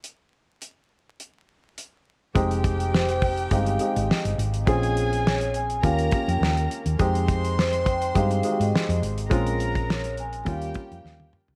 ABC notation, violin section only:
X:1
M:4/4
L:1/8
Q:"Swing 16ths" 1/4=104
K:Fm
V:1 name="Violin section"
z8 | [Gg]6- [Gg] z | [Aa]3 z [Bb]3 z | [cc']6- [cc'] z |
[Bb]3 z [Gg]3 z |]